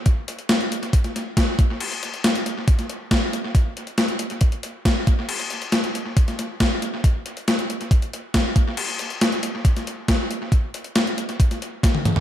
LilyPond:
\new DrumStaff \with { instrumentName = "Drums" } \drummode { \time 4/4 \tempo 4 = 138 <hh bd>8 hh16 hh16 <hh sn>16 hh16 hh16 hh16 <hh bd>16 <hh sn>16 <hh sn>8 <hh bd sn>8 <hh bd>8 | cymc16 hh16 hh16 hh16 <hh sn>16 hh16 hh8 <hh bd>16 <hh sn>16 hh8 <hh bd sn>8 hh8 | <hh bd>8 hh16 hh16 <hh sn>16 hh16 hh16 hh16 <hh bd>16 hh16 hh8 <hh bd sn>8 <hh bd>8 | cymc16 hh16 hh16 hh16 <hh sn>16 hh16 hh8 <hh bd>16 <hh sn>16 <hh sn>8 <hh bd sn>8 hh8 |
<hh bd>8 hh16 hh16 <hh sn>16 hh16 hh16 hh16 <hh bd>16 hh16 hh8 <hh bd sn>8 <hh bd>8 | cymc16 hh16 hh16 hh16 <hh sn>16 hh16 hh8 <hh bd>16 <hh sn>16 hh8 <hh bd sn>8 hh8 | <hh bd>8 hh16 hh16 <hh sn>16 hh16 hh16 hh16 <hh bd>16 <hh sn>16 hh8 <hh bd sn>16 tommh16 <hh toml>16 tomfh16 | }